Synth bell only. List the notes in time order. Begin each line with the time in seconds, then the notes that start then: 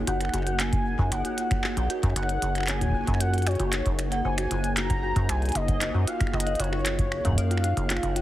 0.07 F#4
0.20 F#5
0.34 F#4
0.47 F#4
0.99 F4
1.12 C#5
1.25 F#4
1.38 F4
1.64 F#4
1.77 F#5
1.90 F#4
2.03 F#4
2.55 F#5
2.68 C#5
2.81 F#4
2.94 F4
3.20 F#4
3.34 F#5
3.47 F#4
3.60 F#4
4.12 F#5
4.25 C5
4.38 F#4
4.51 F4
4.77 F#4
4.90 F#5
5.03 F#4
5.16 F#4
5.68 F#5
5.81 C5
5.94 F#4
6.07 F4
6.33 F4
6.46 F5
6.59 F4
6.72 F4
7.25 F5
7.38 C#5
7.51 F4
7.64 F4
7.90 F4
8.03 F5
8.16 F4